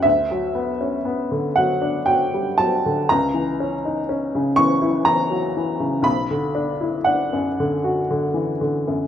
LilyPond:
<<
  \new Staff \with { instrumentName = "Upright piano" } { \time 3/4 \key b \minor \tempo 4 = 59 e''4. fis''8 g''8 a''8 | ais''4. cis'''8 ais''4 | b''4 fis''8 r4. | }
  \new Staff \with { instrumentName = "Upright piano" } { \clef bass \time 3/4 \key b \minor d,16 fis16 b16 cis'16 b16 d16 fis16 d'16 fis16 g16 fis16 d16 | cis,16 e16 cis'16 dis'16 cis'16 cis16 e16 e'16 e16 fis16 e16 cis16 | b,,16 d16 d'16 e'16 d'16 fis,16 d16 fis'16 d16 e16 d16 fis,16 | }
>>